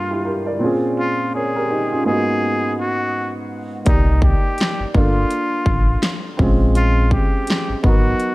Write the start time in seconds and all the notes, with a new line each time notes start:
Already playing: G2 A#3 D4 F4 A4
0.11 E4 G4
0.25 G4 A#4
0.46 A#4 D5
0.59 A#2 C4 C#4
0.64 F4 G#4
0.99 F4
1.35 G#4 A#4 C#5
1.56 G4 A#4
1.71 D#4 G4
1.92 C#4 F4
2.04 G#2 A#3 B3 G#4
2.08 D#4 F#4
2.80 F#4
3.85 C2 A#3 D#4 G4 D5, kick, closed hi-hat
4.22 G4, kick
4.58 snare, clap, closed hi-hat
4.80 G1
4.94 G1 A#3 D4 F4, kick
4.99 A4
5.30 closed hi-hat
5.66 A1, kick
6.03 snare, clap, closed hi-hat
6.37 A#1 C4 C#4 F4, kick
6.43 G#3
6.75 F4, closed hi-hat
7.11 G4, kick
7.47 snare, clap, closed hi-hat
7.69 G#1
7.83 G#1 F#3 B3 D#4 F#4, kick
7.88 A#4
8.20 closed hi-hat